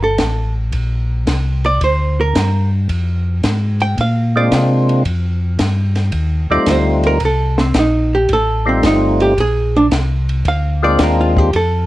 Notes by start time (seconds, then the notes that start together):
Already playing: G1
0.03 A4
0.18 A1, kick, snare, hi-hat pedal, ride
0.72 A#1, kick, ride
1.27 C2, kick, snare, hi-hat pedal, ride
1.64 D5, ride
1.81 D2 C5, kick, ride
2.21 A#4
2.35 G2, kick, snare, hi-hat pedal, ride
2.89 F2, kick, ride
3.43 G#2, kick, snare, hi-hat pedal, ride
3.80 G5, ride
3.97 A#2 F5, kick, ride
4.35 G#3 A#3 C4 D4 F4 D5
4.51 C3, kick, snare, hi-hat pedal, ride
4.89 ride
5.05 F2, kick, ride
5.59 G2, kick, snare, hi-hat pedal, ride
5.96 snare, ride
6.12 D#2, kick, ride
6.50 D#2 G3 A3 C4 D#4 F4 D5
6.66 D2, kick, snare, hi-hat pedal, ride
6.71 C5
7.04 A#4, ride
7.20 C2, kick, ride
7.25 A4
7.58 C4, snare
7.74 A#1, kick, snare, hi-hat pedal, ride
7.79 D#4
8.15 G4
8.29 A1, kick, ride
8.33 A4
8.65 G3 A3 C4 D#4 F4
8.83 G1 D#4, kick, snare, hi-hat pedal, ride
9.20 G4, ride
9.37 A#1 G#4, kick, ride
9.77 D4
9.91 C2, kick, snare, hi-hat pedal, ride
10.29 ride
10.45 D2 F5, kick, ride
10.83 G#3 A#3 C4 D4 F4 D5
10.99 D#2, kick, snare, hi-hat pedal, ride
11.03 A#4
11.21 F4
11.37 G4, kick
11.53 F2 A4, kick, ride